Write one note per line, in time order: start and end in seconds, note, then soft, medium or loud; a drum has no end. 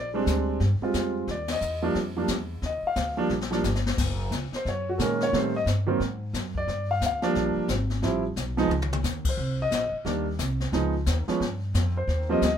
0.00 0.26 A#1 medium
0.14 0.58 G3 medium
0.14 0.58 G#3 medium
0.14 0.59 C4 medium
0.14 0.59 D4 medium
0.26 0.59 D2 medium
0.26 kick soft
0.26 snare medium
0.26 hi-hat pedal medium
0.60 0.80 G2 medium
0.60 brush sweep soft
0.60 kick soft
0.60 snare soft
0.81 1.26 G3 medium
0.81 1.26 G#3 medium
0.81 1.27 C4 medium
0.81 1.27 F4 medium
0.81 muted upright bass stroke soft
0.94 1.27 F2 medium
0.94 kick soft
0.94 snare medium
0.94 hi-hat pedal medium
1.28 1.60 D#2 medium
1.28 1.50 D5 medium
1.28 brush sweep soft
1.28 kick soft
1.28 snare soft
1.48 snare medium
1.48 ride medium
1.52 1.82 D#5 medium
1.61 1.94 E2 medium
1.61 hi-hat pedal medium
1.82 1.94 F3 medium
1.82 1.94 G3 medium
1.82 1.95 A#3 medium
1.82 1.95 D4 medium
1.95 2.28 F2 medium
1.95 brush sweep soft
1.95 kick soft
1.95 snare soft
2.17 2.28 F3 medium
2.17 2.28 G3 medium
2.17 2.29 A#3 medium
2.17 2.29 D4 medium
2.28 2.61 E2 medium
2.28 kick soft
2.28 snare medium
2.28 hi-hat pedal soft
2.62 2.82 D#2 medium
2.62 2.85 D#5 medium
2.62 brush sweep soft
2.62 kick soft
2.62 snare soft
2.83 muted upright bass stroke soft
2.87 3.17 F5 medium
2.96 3.29 D2 medium
2.96 kick soft
2.96 snare medium
2.96 hi-hat pedal medium
3.17 3.29 F3 medium
3.17 3.29 G3 medium
3.17 3.30 A#3 medium
3.17 3.30 D4 medium
3.29 3.63 A#1 medium
3.29 snare soft
3.41 snare soft
3.51 3.63 F3 medium
3.51 3.63 G3 medium
3.51 3.63 A#3 medium
3.51 3.64 D4 medium
3.51 snare medium
3.64 3.97 G1 medium
3.64 snare medium
3.64 hi-hat pedal medium
3.75 snare medium
3.86 snare medium
3.97 4.31 F#1 medium
3.97 brush sweep soft
3.97 kick medium
3.97 snare soft
3.97 crash medium
4.31 4.51 C#2 medium
4.31 kick soft
4.31 snare medium
4.31 hi-hat pedal medium
4.52 4.67 C5 medium
4.52 muted upright bass stroke soft
4.52 snare soft
4.65 4.98 F#2 medium
4.65 4.88 C#5 medium
4.65 brush sweep soft
4.65 kick soft
4.65 snare soft
4.89 5.00 F#4 medium
4.98 5.32 A#2 medium
4.98 5.31 D#3 medium
4.98 5.33 G#3 medium
4.98 5.33 A#3 medium
4.98 5.34 C#4 medium
4.98 5.00 A4 soft
4.98 kick soft
4.98 snare medium
4.98 hi-hat pedal medium
5.03 5.21 A#4 medium
5.20 5.34 C#5 medium
5.20 snare soft
5.33 5.65 A2 medium
5.33 5.52 D#3 medium
5.33 5.52 G3 medium
5.33 5.52 A3 medium
5.33 5.53 C4 medium
5.33 5.55 C5 medium
5.33 brush sweep soft
5.33 kick soft
5.33 snare soft
5.56 5.63 D#5 medium
5.66 5.99 G2 medium
5.66 kick soft
5.66 snare medium
5.66 hi-hat pedal medium
5.87 5.99 D#3 medium
5.87 5.99 F#3 medium
5.87 5.99 A#3 medium
5.87 5.99 C4 medium
6.00 6.33 G#2 medium
6.00 brush sweep soft
6.00 kick soft
6.00 snare soft
6.33 6.67 F#2 medium
6.33 kick soft
6.33 snare medium
6.33 hi-hat pedal medium
6.55 6.88 D5 medium
6.55 kick soft
6.67 7.00 G2 medium
6.67 brush sweep soft
6.67 kick soft
6.67 snare soft
6.91 7.02 F5 medium
7.01 7.34 D2 medium
7.01 kick soft
7.01 snare medium
7.01 hi-hat pedal medium
7.06 7.24 F5 medium
7.22 7.66 F3 medium
7.22 7.67 G3 medium
7.22 7.67 A#3 medium
7.22 7.67 D4 medium
7.22 snare soft
7.35 7.55 A#1 medium
7.35 brush sweep soft
7.35 kick soft
7.35 snare soft
7.57 muted upright bass stroke soft
7.68 8.01 G#1 medium
7.68 kick soft
7.68 snare medium
7.68 hi-hat pedal medium
7.90 snare soft
8.02 8.35 A1 medium
8.02 8.22 F3 medium
8.02 8.22 G3 medium
8.02 8.22 C4 medium
8.02 8.22 E4 medium
8.02 brush sweep soft
8.02 kick soft
8.02 snare soft
8.36 8.68 B1 medium
8.36 kick soft
8.36 snare medium
8.36 hi-hat pedal medium
8.57 8.69 F3 medium
8.57 8.69 G#3 medium
8.57 8.69 B3 medium
8.57 8.70 D#4 medium
8.57 snare soft
8.69 9.02 C#2 medium
8.69 mid tom soft
8.82 mid tom medium
8.93 mid tom medium
9.03 9.36 D#2 medium
9.03 snare medium
9.03 hi-hat pedal medium
9.25 kick medium
9.25 crash medium
9.29 9.59 C5 medium
9.37 9.70 C2 medium
9.37 brush sweep soft
9.62 9.72 D#5 medium
9.71 9.91 A#1 medium
9.71 kick soft
9.71 snare medium
9.71 hi-hat pedal medium
9.92 muted upright bass stroke soft
10.05 10.38 D#2 medium
10.05 10.24 D#3 medium
10.05 10.24 G3 medium
10.05 10.24 A#3 medium
10.05 10.25 D4 medium
10.05 brush sweep soft
10.05 kick soft
10.05 snare soft
10.39 10.72 C2 medium
10.39 kick soft
10.39 snare medium
10.39 hi-hat pedal medium
10.60 snare soft
10.72 11.05 C#2 medium
10.72 10.92 F3 medium
10.72 10.92 G#3 medium
10.72 10.92 B3 soft
10.72 10.92 D#4 medium
10.72 brush sweep soft
10.72 kick soft
10.72 snare soft
11.06 11.26 D#2 medium
11.06 kick soft
11.06 snare medium
11.06 hi-hat pedal medium
11.28 11.39 F3 medium
11.28 11.40 G#3 medium
11.28 11.40 B3 medium
11.28 11.40 C#4 medium
11.28 muted upright bass stroke soft
11.28 snare soft
11.40 11.73 G2 medium
11.40 brush sweep medium
11.40 kick soft
11.40 snare soft
11.74 12.07 F2 medium
11.74 kick soft
11.74 snare medium
11.74 hi-hat pedal medium
11.97 12.28 C5 medium
12.08 12.41 D#2 medium
12.08 brush sweep medium
12.08 kick soft
12.08 snare soft
12.29 12.41 F3 medium
12.29 12.41 G3 medium
12.29 12.41 A#3 medium
12.29 12.42 C4 medium
12.29 12.43 D#5 medium
12.42 12.58 D2 medium
12.42 12.57 D#5 medium
12.42 kick soft
12.42 snare medium
12.42 hi-hat pedal medium